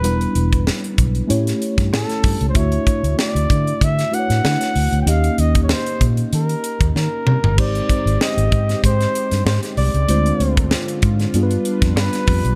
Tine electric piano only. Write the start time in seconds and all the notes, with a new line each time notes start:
0.02 G3 B3 D4 E4 B4
1.27 A3 C#4 E4 G4 C#5
2.54 A3 D4 E4 F#4 E5
4.11 A3 D4 E4 F#4 B4
4.19 C#5
5.06 A#3 C#4 D#4 G4 D#5
7.57 G#3 C4 D#4 G4 C5
10.08 G#3 C4 D4 F4 C5
11.34 G3 B3 D4 F4 G#4
11.43 B4